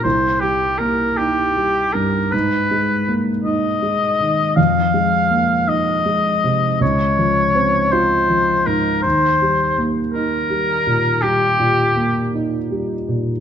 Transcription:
<<
  \new Staff \with { instrumentName = "Oboe" } { \time 12/8 \key ees \mixolydian \tempo 4. = 54 c''8 g'8 bes'8 g'4 bes'8 ces''4 r8 ees''4. | f''4. ees''4. des''4. c''4 bes'8 | c''4 r8 bes'4. g'4. r4. | }
  \new Staff \with { instrumentName = "Grand piano" } { \clef bass \time 12/8 \key ees \mixolydian c,8 g8 bes8 ees'8 g8 g,8 aes,8 aes8 bes8 ees'8 aes8 ees8 | f,8 aes8 bes8 ees'8 aes8 c8 des,8 f8 c'8 f'8 f8 aes,8 | ees,8 g8 bes8 ees'8 g8 bes,8 g8 bes,8 bes8 ees'8 g8 bes,8 | }
>>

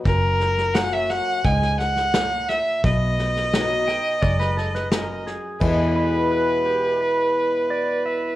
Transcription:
<<
  \new Staff \with { instrumentName = "Fiddle" } { \time 4/4 \key e \major \tempo 4 = 86 ais'4 fis''16 e''16 fis''8 gis''8 fis''4 e''8 | dis''2.~ dis''8 r8 | b'1 | }
  \new Staff \with { instrumentName = "Pedal steel guitar" } { \time 4/4 \key e \major r1 | r4. g''8 d''16 b'16 a'16 b'16 ais'8 gis'8 | r8 b'8 b'8 g'8 b'4 d''8 e''8 | }
  \new Staff \with { instrumentName = "Steel-string acoustic guitar" } { \clef bass \time 4/4 \key e \major << { r4 <fis ais cis' fis'>4 r2 | r4 <fis b dis' fis'>8 dis'8 r2 | <e, b, e gis b e'>1 | } \\ { fis,2 gis,4 ais,4 | b,2 gis,4 fis,4 | r1 | } >> }
  \new Staff \with { instrumentName = "Fingered electric bass" } { \clef bass \time 4/4 \key e \major fis,,2 cis,2 | b,,2 fis,,2 | e,1 | }
  \new DrumStaff \with { instrumentName = "Drums" } \drummode { \time 4/4 <bd sn>8 sn16 sn16 <hhp sn>8 sn8 <bd sn>16 sn16 sn16 sn16 <hhp sn>8 sn8 | <bd sn>8 sn16 sn16 <hhp sn>8 sn8 <bd sn>16 sn16 sn16 sn16 <hhp sn>8 sn8 | <cymc bd>4 r4 r4 r4 | }
>>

